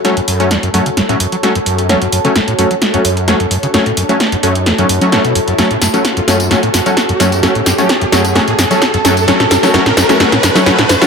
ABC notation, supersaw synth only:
X:1
M:4/4
L:1/16
Q:1/4=130
K:F#m
V:1 name="Supersaw synth"
[F,A,C] z2 [F,A,C] z2 [F,A,C] z2 [F,A,C] z2 [F,A,C] z3 | [F,A,C] z2 [F,A,C] z2 [F,A,C] z2 [F,A,C] z2 [F,A,C] z3 | [F,A,C] z2 [F,A,C] z2 [F,A,C] z2 [F,A,C] z [F,A,C] [F,A,C] z3 | [F,A,C] z2 [F,A,C] z2 [F,A,C] z [F,A,C] z2 [F,A,C] z2 [F,A,C] z |
[F,A,C] z2 [F,A,C] z2 [F,A,C] z [F,A,C] z2 [F,A,C] z2 [F,A,C] z | [F,A,C] z2 [F,A,C] [F,A,C] z2 [F,A,C] [F,A,C] z2 [F,A,C] [F,A,C] z2 [F,A,C] |]